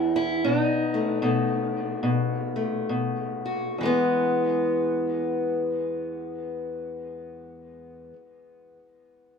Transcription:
0, 0, Header, 1, 2, 480
1, 0, Start_track
1, 0, Key_signature, 4, "major"
1, 0, Tempo, 764331
1, 287, Time_signature, 4, 2, 24, 8
1, 773, Tempo, 834492
1, 1733, Tempo, 914634
1, 2213, Tempo, 947867
1, 5035, End_track
2, 0, Start_track
2, 0, Title_t, "Steel-string acoustic guitar"
2, 0, Program_c, 0, 25
2, 0, Note_on_c, 0, 40, 75
2, 0, Note_on_c, 0, 56, 50
2, 0, Note_on_c, 0, 62, 52
2, 0, Note_on_c, 0, 64, 96
2, 92, Note_off_c, 0, 64, 0
2, 100, Note_on_c, 0, 64, 86
2, 267, Note_off_c, 0, 56, 0
2, 268, Note_off_c, 0, 62, 0
2, 279, Note_on_c, 0, 63, 78
2, 280, Note_on_c, 0, 47, 73
2, 283, Note_off_c, 0, 64, 0
2, 285, Note_off_c, 0, 40, 0
2, 590, Note_on_c, 0, 57, 50
2, 759, Note_off_c, 0, 47, 0
2, 761, Note_off_c, 0, 57, 0
2, 766, Note_on_c, 0, 47, 71
2, 769, Note_on_c, 0, 57, 45
2, 1225, Note_off_c, 0, 47, 0
2, 1232, Note_on_c, 0, 47, 73
2, 1530, Note_off_c, 0, 57, 0
2, 1537, Note_on_c, 0, 57, 47
2, 1722, Note_off_c, 0, 47, 0
2, 1729, Note_on_c, 0, 47, 66
2, 2025, Note_on_c, 0, 66, 49
2, 2187, Note_off_c, 0, 57, 0
2, 2188, Note_off_c, 0, 47, 0
2, 2189, Note_off_c, 0, 66, 0
2, 2196, Note_on_c, 0, 40, 62
2, 2209, Note_off_c, 0, 63, 0
2, 2209, Note_on_c, 0, 52, 62
2, 2221, Note_on_c, 0, 56, 61
2, 2233, Note_on_c, 0, 59, 79
2, 4387, Note_off_c, 0, 40, 0
2, 4399, Note_off_c, 0, 52, 0
2, 4403, Note_off_c, 0, 59, 0
2, 4411, Note_off_c, 0, 56, 0
2, 5035, End_track
0, 0, End_of_file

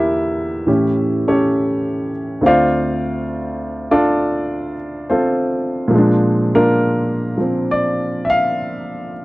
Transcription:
0, 0, Header, 1, 2, 480
1, 0, Start_track
1, 0, Tempo, 874636
1, 1332, Time_signature, 4, 2, 24, 8
1, 5075, End_track
2, 0, Start_track
2, 0, Title_t, "Grand piano"
2, 0, Program_c, 0, 0
2, 0, Control_c, 0, 64, 127
2, 0, Note_on_c, 0, 40, 60
2, 0, Note_on_c, 0, 50, 48
2, 0, Note_on_c, 0, 58, 48
2, 0, Note_on_c, 0, 64, 61
2, 0, Note_on_c, 0, 67, 56
2, 0, Note_on_c, 0, 70, 54
2, 0, Note_on_c, 0, 76, 76
2, 356, Note_off_c, 0, 40, 0
2, 360, Note_off_c, 0, 70, 0
2, 365, Note_off_c, 0, 50, 0
2, 365, Note_off_c, 0, 67, 0
2, 365, Note_on_c, 0, 45, 48
2, 366, Note_on_c, 0, 52, 47
2, 372, Note_on_c, 0, 61, 46
2, 373, Note_on_c, 0, 67, 51
2, 376, Note_off_c, 0, 58, 0
2, 380, Control_c, 0, 64, 0
2, 465, Control_c, 0, 64, 127
2, 685, Note_off_c, 0, 76, 0
2, 686, Note_off_c, 0, 64, 0
2, 693, Note_off_c, 0, 61, 0
2, 697, Note_off_c, 0, 67, 0
2, 701, Note_on_c, 0, 61, 52
2, 702, Note_on_c, 0, 69, 54
2, 703, Note_on_c, 0, 73, 64
2, 705, Note_on_c, 0, 67, 53
2, 1157, Note_off_c, 0, 61, 0
2, 1157, Note_off_c, 0, 69, 0
2, 1158, Note_off_c, 0, 73, 0
2, 1159, Note_off_c, 0, 67, 0
2, 1323, Note_on_c, 0, 38, 52
2, 1326, Note_on_c, 0, 50, 49
2, 1328, Note_off_c, 0, 45, 0
2, 1329, Note_off_c, 0, 52, 0
2, 1329, Note_on_c, 0, 60, 46
2, 1332, Note_on_c, 0, 65, 53
2, 1339, Control_c, 0, 64, 0
2, 1344, Note_off_c, 0, 65, 0
2, 1351, Note_on_c, 0, 74, 69
2, 1351, Note_on_c, 0, 77, 82
2, 1352, Note_on_c, 0, 72, 75
2, 1353, Note_on_c, 0, 65, 70
2, 1448, Control_c, 0, 64, 127
2, 2125, Note_off_c, 0, 72, 0
2, 2125, Note_off_c, 0, 74, 0
2, 2125, Note_off_c, 0, 77, 0
2, 2126, Note_off_c, 0, 65, 0
2, 2147, Note_on_c, 0, 74, 83
2, 2148, Note_on_c, 0, 65, 73
2, 2148, Note_on_c, 0, 69, 74
2, 2149, Note_on_c, 0, 62, 71
2, 2600, Note_off_c, 0, 74, 0
2, 2601, Note_off_c, 0, 62, 0
2, 2601, Note_off_c, 0, 65, 0
2, 2601, Note_off_c, 0, 69, 0
2, 2793, Note_off_c, 0, 60, 0
2, 2797, Note_on_c, 0, 72, 67
2, 2801, Note_on_c, 0, 60, 51
2, 2803, Note_on_c, 0, 65, 55
2, 2803, Note_on_c, 0, 69, 57
2, 3225, Note_on_c, 0, 46, 64
2, 3242, Note_on_c, 0, 53, 57
2, 3246, Note_off_c, 0, 69, 0
2, 3248, Note_off_c, 0, 38, 0
2, 3249, Note_off_c, 0, 50, 0
2, 3258, Control_c, 0, 64, 0
2, 3263, Note_on_c, 0, 56, 56
2, 3283, Note_on_c, 0, 62, 61
2, 3342, Control_c, 0, 64, 127
2, 3568, Note_off_c, 0, 72, 0
2, 3570, Note_off_c, 0, 60, 0
2, 3571, Note_off_c, 0, 65, 0
2, 3586, Note_off_c, 0, 62, 0
2, 3595, Note_on_c, 0, 58, 58
2, 3595, Note_on_c, 0, 62, 57
2, 3595, Note_on_c, 0, 70, 79
2, 3597, Note_on_c, 0, 65, 59
2, 4040, Note_off_c, 0, 53, 0
2, 4044, Note_off_c, 0, 62, 0
2, 4044, Note_off_c, 0, 70, 0
2, 4045, Note_off_c, 0, 58, 0
2, 4045, Note_off_c, 0, 65, 0
2, 4048, Note_on_c, 0, 53, 42
2, 4063, Note_on_c, 0, 60, 42
2, 4233, Note_on_c, 0, 74, 82
2, 4527, Note_on_c, 0, 76, 62
2, 4539, Note_off_c, 0, 74, 0
2, 4544, Note_off_c, 0, 76, 0
2, 4554, Note_on_c, 0, 77, 89
2, 5004, Note_off_c, 0, 77, 0
2, 5075, Note_off_c, 0, 46, 0
2, 5075, Note_off_c, 0, 53, 0
2, 5075, Note_off_c, 0, 56, 0
2, 5075, Note_off_c, 0, 60, 0
2, 5075, End_track
0, 0, End_of_file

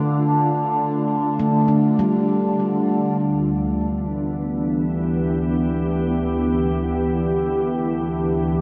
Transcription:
0, 0, Header, 1, 4, 480
1, 0, Start_track
1, 0, Tempo, 500000
1, 8268, End_track
2, 0, Start_track
2, 0, Title_t, "Handpan"
2, 0, Program_c, 0, 114
2, 0, Note_on_c, 0, 71, 60
2, 1138, Note_off_c, 0, 71, 0
2, 1339, Note_on_c, 0, 57, 62
2, 1613, Note_on_c, 0, 62, 51
2, 1911, Note_on_c, 0, 55, 68
2, 2069, Note_off_c, 0, 57, 0
2, 3309, Note_off_c, 0, 62, 0
2, 4351, Note_off_c, 0, 55, 0
2, 8268, End_track
3, 0, Start_track
3, 0, Title_t, "Ambient pad"
3, 0, Program_c, 1, 92
3, 0, Note_on_c, 1, 50, 68
3, 0, Note_on_c, 1, 57, 63
3, 0, Note_on_c, 1, 62, 62
3, 0, Note_on_c, 1, 65, 65
3, 3077, Note_off_c, 1, 50, 0
3, 3079, Note_off_c, 1, 65, 0
3, 3084, Note_off_c, 1, 57, 0
3, 3086, Note_on_c, 1, 38, 68
3, 3273, Note_on_c, 1, 52, 72
3, 3559, Note_on_c, 1, 59, 84
3, 4292, Note_on_c, 1, 64, 73
3, 4489, Note_on_c, 1, 67, 74
3, 5685, Note_off_c, 1, 62, 0
3, 8268, Note_off_c, 1, 38, 0
3, 8268, Note_off_c, 1, 52, 0
3, 8268, Note_off_c, 1, 59, 0
3, 8268, Note_off_c, 1, 64, 0
3, 8268, Note_off_c, 1, 67, 0
3, 8268, End_track
4, 0, Start_track
4, 0, Title_t, "Synth drone"
4, 0, Program_c, 2, 95
4, 0, Note_on_c, 2, 50, 64
4, 0, Note_on_c, 2, 62, 66
4, 3067, Note_off_c, 2, 62, 0
4, 3070, Note_off_c, 2, 50, 0
4, 3079, Note_on_c, 2, 62, 71
4, 3081, Note_on_c, 2, 50, 75
4, 8268, Note_off_c, 2, 50, 0
4, 8268, Note_off_c, 2, 62, 0
4, 8268, End_track
0, 0, End_of_file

